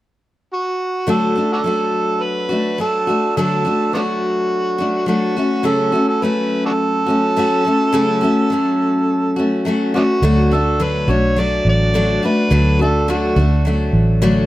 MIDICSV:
0, 0, Header, 1, 4, 480
1, 0, Start_track
1, 0, Key_signature, 2, "major"
1, 0, Tempo, 572519
1, 894, Time_signature, 4, 2, 24, 8
1, 12123, End_track
2, 0, Start_track
2, 0, Title_t, "Harmonica"
2, 0, Program_c, 0, 22
2, 448, Note_on_c, 0, 66, 66
2, 879, Note_off_c, 0, 66, 0
2, 921, Note_on_c, 0, 69, 82
2, 1244, Note_off_c, 0, 69, 0
2, 1281, Note_on_c, 0, 62, 53
2, 1281, Note_on_c, 0, 66, 53
2, 1281, Note_on_c, 0, 69, 76
2, 1333, Note_off_c, 0, 66, 0
2, 1347, Note_off_c, 0, 62, 0
2, 1873, Note_on_c, 0, 71, 85
2, 1886, Note_off_c, 0, 69, 0
2, 2344, Note_off_c, 0, 71, 0
2, 2351, Note_on_c, 0, 69, 80
2, 2791, Note_off_c, 0, 69, 0
2, 2824, Note_on_c, 0, 69, 73
2, 3267, Note_off_c, 0, 69, 0
2, 3300, Note_on_c, 0, 59, 49
2, 3300, Note_on_c, 0, 62, 49
2, 3300, Note_on_c, 0, 66, 70
2, 3358, Note_off_c, 0, 59, 0
2, 3364, Note_off_c, 0, 62, 0
2, 4225, Note_off_c, 0, 66, 0
2, 4256, Note_on_c, 0, 66, 71
2, 4746, Note_on_c, 0, 69, 82
2, 4759, Note_off_c, 0, 66, 0
2, 5096, Note_off_c, 0, 69, 0
2, 5101, Note_on_c, 0, 69, 66
2, 5225, Note_on_c, 0, 71, 73
2, 5238, Note_off_c, 0, 69, 0
2, 5575, Note_off_c, 0, 71, 0
2, 5580, Note_on_c, 0, 62, 60
2, 5580, Note_on_c, 0, 66, 60
2, 5580, Note_on_c, 0, 69, 85
2, 5630, Note_off_c, 0, 66, 0
2, 5634, Note_off_c, 0, 62, 0
2, 8063, Note_off_c, 0, 69, 0
2, 8345, Note_on_c, 0, 59, 54
2, 8345, Note_on_c, 0, 62, 54
2, 8345, Note_on_c, 0, 66, 77
2, 8397, Note_off_c, 0, 59, 0
2, 8406, Note_off_c, 0, 62, 0
2, 8835, Note_on_c, 0, 69, 72
2, 8848, Note_off_c, 0, 66, 0
2, 9076, Note_on_c, 0, 71, 81
2, 9088, Note_off_c, 0, 69, 0
2, 9305, Note_on_c, 0, 73, 92
2, 9318, Note_off_c, 0, 71, 0
2, 9548, Note_on_c, 0, 74, 98
2, 9560, Note_off_c, 0, 73, 0
2, 9780, Note_off_c, 0, 74, 0
2, 9802, Note_on_c, 0, 74, 106
2, 10281, Note_on_c, 0, 71, 92
2, 10294, Note_off_c, 0, 74, 0
2, 10741, Note_off_c, 0, 71, 0
2, 10746, Note_on_c, 0, 69, 69
2, 10982, Note_on_c, 0, 66, 64
2, 10995, Note_off_c, 0, 69, 0
2, 11455, Note_off_c, 0, 66, 0
2, 12123, End_track
3, 0, Start_track
3, 0, Title_t, "Steel-string acoustic guitar"
3, 0, Program_c, 1, 25
3, 894, Note_on_c, 1, 50, 53
3, 901, Note_on_c, 1, 57, 58
3, 902, Note_on_c, 1, 54, 60
3, 912, Note_on_c, 1, 62, 60
3, 914, Note_on_c, 1, 66, 66
3, 1127, Note_off_c, 1, 66, 0
3, 1134, Note_off_c, 1, 50, 0
3, 1137, Note_on_c, 1, 66, 39
3, 1138, Note_off_c, 1, 54, 0
3, 1138, Note_off_c, 1, 57, 0
3, 1143, Note_off_c, 1, 62, 0
3, 1153, Note_on_c, 1, 62, 37
3, 1161, Note_on_c, 1, 57, 33
3, 1375, Note_on_c, 1, 54, 45
3, 1376, Note_off_c, 1, 66, 0
3, 1379, Note_off_c, 1, 57, 0
3, 1384, Note_off_c, 1, 62, 0
3, 1389, Note_on_c, 1, 57, 44
3, 1394, Note_on_c, 1, 62, 43
3, 1402, Note_on_c, 1, 66, 50
3, 2084, Note_off_c, 1, 66, 0
3, 2087, Note_on_c, 1, 66, 40
3, 2092, Note_off_c, 1, 62, 0
3, 2102, Note_on_c, 1, 62, 40
3, 2113, Note_off_c, 1, 57, 0
3, 2117, Note_on_c, 1, 57, 34
3, 2328, Note_off_c, 1, 54, 0
3, 2331, Note_off_c, 1, 66, 0
3, 2332, Note_on_c, 1, 54, 43
3, 2333, Note_off_c, 1, 57, 0
3, 2339, Note_off_c, 1, 62, 0
3, 2343, Note_on_c, 1, 57, 48
3, 2348, Note_on_c, 1, 62, 47
3, 2358, Note_on_c, 1, 66, 52
3, 2564, Note_off_c, 1, 66, 0
3, 2574, Note_off_c, 1, 54, 0
3, 2574, Note_on_c, 1, 66, 42
3, 2578, Note_off_c, 1, 62, 0
3, 2579, Note_off_c, 1, 57, 0
3, 2589, Note_on_c, 1, 62, 38
3, 2597, Note_on_c, 1, 57, 31
3, 2815, Note_off_c, 1, 66, 0
3, 2822, Note_off_c, 1, 62, 0
3, 2824, Note_off_c, 1, 57, 0
3, 2825, Note_on_c, 1, 50, 55
3, 2827, Note_on_c, 1, 54, 66
3, 2834, Note_on_c, 1, 57, 67
3, 2839, Note_on_c, 1, 62, 65
3, 2843, Note_on_c, 1, 66, 71
3, 3048, Note_off_c, 1, 66, 0
3, 3058, Note_on_c, 1, 66, 41
3, 3061, Note_off_c, 1, 50, 0
3, 3061, Note_off_c, 1, 54, 0
3, 3063, Note_off_c, 1, 62, 0
3, 3065, Note_off_c, 1, 57, 0
3, 3073, Note_on_c, 1, 62, 39
3, 3082, Note_on_c, 1, 57, 32
3, 3296, Note_on_c, 1, 54, 39
3, 3297, Note_off_c, 1, 66, 0
3, 3302, Note_off_c, 1, 57, 0
3, 3305, Note_off_c, 1, 62, 0
3, 3312, Note_on_c, 1, 57, 45
3, 3316, Note_on_c, 1, 62, 51
3, 3325, Note_on_c, 1, 66, 46
3, 4007, Note_off_c, 1, 66, 0
3, 4011, Note_on_c, 1, 66, 53
3, 4018, Note_off_c, 1, 62, 0
3, 4028, Note_on_c, 1, 62, 45
3, 4034, Note_off_c, 1, 57, 0
3, 4038, Note_on_c, 1, 57, 39
3, 4241, Note_off_c, 1, 54, 0
3, 4244, Note_on_c, 1, 54, 53
3, 4248, Note_off_c, 1, 57, 0
3, 4254, Note_off_c, 1, 66, 0
3, 4255, Note_off_c, 1, 62, 0
3, 4258, Note_on_c, 1, 57, 54
3, 4265, Note_on_c, 1, 62, 54
3, 4270, Note_on_c, 1, 66, 49
3, 4489, Note_off_c, 1, 66, 0
3, 4490, Note_off_c, 1, 54, 0
3, 4497, Note_off_c, 1, 57, 0
3, 4499, Note_on_c, 1, 66, 42
3, 4501, Note_off_c, 1, 62, 0
3, 4510, Note_on_c, 1, 61, 44
3, 4521, Note_on_c, 1, 57, 36
3, 4719, Note_off_c, 1, 57, 0
3, 4722, Note_on_c, 1, 49, 57
3, 4726, Note_on_c, 1, 54, 57
3, 4727, Note_off_c, 1, 66, 0
3, 4729, Note_off_c, 1, 61, 0
3, 4729, Note_on_c, 1, 57, 64
3, 4737, Note_on_c, 1, 66, 64
3, 4739, Note_on_c, 1, 61, 67
3, 4954, Note_off_c, 1, 66, 0
3, 4964, Note_on_c, 1, 66, 40
3, 4967, Note_off_c, 1, 61, 0
3, 4969, Note_off_c, 1, 49, 0
3, 4971, Note_off_c, 1, 54, 0
3, 4973, Note_off_c, 1, 57, 0
3, 4977, Note_on_c, 1, 61, 35
3, 4991, Note_on_c, 1, 57, 36
3, 5210, Note_off_c, 1, 66, 0
3, 5215, Note_off_c, 1, 57, 0
3, 5216, Note_on_c, 1, 54, 45
3, 5217, Note_off_c, 1, 61, 0
3, 5225, Note_on_c, 1, 57, 50
3, 5234, Note_on_c, 1, 61, 46
3, 5237, Note_on_c, 1, 66, 49
3, 5919, Note_off_c, 1, 66, 0
3, 5922, Note_on_c, 1, 66, 47
3, 5929, Note_off_c, 1, 61, 0
3, 5939, Note_on_c, 1, 61, 42
3, 5950, Note_off_c, 1, 57, 0
3, 5954, Note_on_c, 1, 57, 35
3, 6169, Note_off_c, 1, 66, 0
3, 6170, Note_off_c, 1, 57, 0
3, 6172, Note_off_c, 1, 54, 0
3, 6175, Note_on_c, 1, 54, 56
3, 6178, Note_off_c, 1, 61, 0
3, 6180, Note_on_c, 1, 57, 60
3, 6188, Note_on_c, 1, 61, 66
3, 6196, Note_on_c, 1, 66, 64
3, 6402, Note_off_c, 1, 66, 0
3, 6412, Note_on_c, 1, 66, 47
3, 6416, Note_off_c, 1, 54, 0
3, 6417, Note_off_c, 1, 61, 0
3, 6418, Note_off_c, 1, 57, 0
3, 6427, Note_on_c, 1, 61, 44
3, 6434, Note_on_c, 1, 57, 45
3, 6645, Note_off_c, 1, 57, 0
3, 6645, Note_on_c, 1, 49, 73
3, 6650, Note_off_c, 1, 66, 0
3, 6652, Note_off_c, 1, 61, 0
3, 6653, Note_on_c, 1, 54, 70
3, 6656, Note_on_c, 1, 57, 78
3, 6660, Note_on_c, 1, 66, 78
3, 6662, Note_on_c, 1, 61, 72
3, 6873, Note_off_c, 1, 66, 0
3, 6883, Note_on_c, 1, 66, 52
3, 6891, Note_off_c, 1, 49, 0
3, 6891, Note_off_c, 1, 61, 0
3, 6895, Note_off_c, 1, 54, 0
3, 6896, Note_off_c, 1, 57, 0
3, 6901, Note_on_c, 1, 61, 49
3, 6911, Note_on_c, 1, 57, 44
3, 7126, Note_on_c, 1, 54, 51
3, 7129, Note_off_c, 1, 66, 0
3, 7132, Note_off_c, 1, 57, 0
3, 7138, Note_off_c, 1, 61, 0
3, 7142, Note_on_c, 1, 57, 52
3, 7151, Note_on_c, 1, 61, 61
3, 7159, Note_on_c, 1, 66, 50
3, 7845, Note_off_c, 1, 66, 0
3, 7849, Note_on_c, 1, 66, 49
3, 7859, Note_off_c, 1, 61, 0
3, 7869, Note_on_c, 1, 61, 41
3, 7874, Note_off_c, 1, 57, 0
3, 7877, Note_on_c, 1, 57, 43
3, 8088, Note_off_c, 1, 54, 0
3, 8091, Note_off_c, 1, 57, 0
3, 8091, Note_on_c, 1, 54, 54
3, 8092, Note_off_c, 1, 66, 0
3, 8100, Note_off_c, 1, 61, 0
3, 8101, Note_on_c, 1, 57, 62
3, 8110, Note_on_c, 1, 61, 61
3, 8116, Note_on_c, 1, 66, 60
3, 8324, Note_off_c, 1, 66, 0
3, 8333, Note_off_c, 1, 54, 0
3, 8334, Note_on_c, 1, 66, 48
3, 8338, Note_off_c, 1, 57, 0
3, 8340, Note_off_c, 1, 61, 0
3, 8350, Note_on_c, 1, 61, 49
3, 8360, Note_on_c, 1, 57, 48
3, 8573, Note_on_c, 1, 50, 68
3, 8574, Note_off_c, 1, 66, 0
3, 8576, Note_off_c, 1, 57, 0
3, 8578, Note_on_c, 1, 54, 73
3, 8580, Note_off_c, 1, 61, 0
3, 8583, Note_on_c, 1, 62, 68
3, 8586, Note_on_c, 1, 57, 67
3, 8590, Note_on_c, 1, 66, 70
3, 8805, Note_off_c, 1, 66, 0
3, 8814, Note_off_c, 1, 50, 0
3, 8815, Note_on_c, 1, 66, 45
3, 8816, Note_off_c, 1, 54, 0
3, 8817, Note_off_c, 1, 62, 0
3, 8820, Note_off_c, 1, 57, 0
3, 8827, Note_on_c, 1, 62, 43
3, 8841, Note_on_c, 1, 57, 36
3, 9044, Note_off_c, 1, 57, 0
3, 9051, Note_on_c, 1, 50, 57
3, 9053, Note_off_c, 1, 62, 0
3, 9053, Note_on_c, 1, 54, 62
3, 9054, Note_on_c, 1, 57, 62
3, 9055, Note_off_c, 1, 66, 0
3, 9063, Note_on_c, 1, 66, 66
3, 9064, Note_on_c, 1, 62, 59
3, 9278, Note_off_c, 1, 66, 0
3, 9288, Note_on_c, 1, 66, 45
3, 9292, Note_off_c, 1, 50, 0
3, 9293, Note_off_c, 1, 54, 0
3, 9293, Note_off_c, 1, 62, 0
3, 9294, Note_off_c, 1, 57, 0
3, 9303, Note_on_c, 1, 62, 41
3, 9312, Note_on_c, 1, 57, 35
3, 9527, Note_on_c, 1, 54, 51
3, 9529, Note_off_c, 1, 57, 0
3, 9530, Note_off_c, 1, 66, 0
3, 9535, Note_off_c, 1, 62, 0
3, 9539, Note_on_c, 1, 57, 52
3, 9545, Note_on_c, 1, 62, 50
3, 9555, Note_on_c, 1, 66, 51
3, 10010, Note_on_c, 1, 50, 63
3, 10014, Note_off_c, 1, 57, 0
3, 10015, Note_off_c, 1, 62, 0
3, 10016, Note_off_c, 1, 54, 0
3, 10018, Note_on_c, 1, 57, 64
3, 10020, Note_on_c, 1, 54, 64
3, 10021, Note_off_c, 1, 66, 0
3, 10024, Note_on_c, 1, 66, 72
3, 10025, Note_on_c, 1, 62, 70
3, 10241, Note_off_c, 1, 66, 0
3, 10251, Note_off_c, 1, 50, 0
3, 10251, Note_on_c, 1, 66, 47
3, 10255, Note_off_c, 1, 57, 0
3, 10255, Note_off_c, 1, 62, 0
3, 10256, Note_off_c, 1, 54, 0
3, 10265, Note_on_c, 1, 62, 41
3, 10274, Note_on_c, 1, 57, 42
3, 10483, Note_on_c, 1, 50, 59
3, 10484, Note_off_c, 1, 57, 0
3, 10487, Note_off_c, 1, 66, 0
3, 10489, Note_off_c, 1, 62, 0
3, 10489, Note_on_c, 1, 54, 70
3, 10494, Note_on_c, 1, 57, 71
3, 10497, Note_on_c, 1, 66, 63
3, 10499, Note_on_c, 1, 62, 66
3, 10714, Note_off_c, 1, 66, 0
3, 10724, Note_on_c, 1, 66, 43
3, 10727, Note_off_c, 1, 50, 0
3, 10730, Note_off_c, 1, 54, 0
3, 10731, Note_off_c, 1, 62, 0
3, 10732, Note_off_c, 1, 57, 0
3, 10741, Note_on_c, 1, 62, 43
3, 10751, Note_on_c, 1, 57, 40
3, 10967, Note_off_c, 1, 66, 0
3, 10967, Note_on_c, 1, 50, 62
3, 10969, Note_off_c, 1, 57, 0
3, 10971, Note_off_c, 1, 62, 0
3, 10971, Note_on_c, 1, 54, 58
3, 10979, Note_on_c, 1, 57, 62
3, 10981, Note_on_c, 1, 62, 69
3, 10982, Note_on_c, 1, 66, 63
3, 11193, Note_off_c, 1, 66, 0
3, 11203, Note_on_c, 1, 66, 46
3, 11208, Note_off_c, 1, 50, 0
3, 11210, Note_off_c, 1, 54, 0
3, 11211, Note_off_c, 1, 62, 0
3, 11214, Note_off_c, 1, 57, 0
3, 11221, Note_on_c, 1, 62, 41
3, 11230, Note_on_c, 1, 57, 37
3, 11444, Note_on_c, 1, 54, 50
3, 11446, Note_off_c, 1, 66, 0
3, 11447, Note_off_c, 1, 57, 0
3, 11452, Note_off_c, 1, 62, 0
3, 11457, Note_on_c, 1, 57, 51
3, 11462, Note_on_c, 1, 62, 50
3, 11468, Note_on_c, 1, 66, 55
3, 11919, Note_on_c, 1, 50, 75
3, 11920, Note_off_c, 1, 54, 0
3, 11922, Note_off_c, 1, 57, 0
3, 11922, Note_off_c, 1, 62, 0
3, 11923, Note_on_c, 1, 54, 74
3, 11926, Note_on_c, 1, 57, 78
3, 11930, Note_off_c, 1, 66, 0
3, 11932, Note_on_c, 1, 62, 79
3, 11933, Note_on_c, 1, 66, 88
3, 12123, Note_off_c, 1, 50, 0
3, 12123, Note_off_c, 1, 54, 0
3, 12123, Note_off_c, 1, 57, 0
3, 12123, Note_off_c, 1, 62, 0
3, 12123, Note_off_c, 1, 66, 0
3, 12123, End_track
4, 0, Start_track
4, 0, Title_t, "Fingered electric bass"
4, 0, Program_c, 2, 33
4, 8570, Note_on_c, 2, 38, 79
4, 9258, Note_off_c, 2, 38, 0
4, 9286, Note_on_c, 2, 35, 67
4, 9736, Note_off_c, 2, 35, 0
4, 9766, Note_on_c, 2, 33, 68
4, 10215, Note_off_c, 2, 33, 0
4, 10487, Note_on_c, 2, 38, 83
4, 11174, Note_off_c, 2, 38, 0
4, 11203, Note_on_c, 2, 38, 69
4, 11652, Note_off_c, 2, 38, 0
4, 11679, Note_on_c, 2, 33, 78
4, 12123, Note_off_c, 2, 33, 0
4, 12123, End_track
0, 0, End_of_file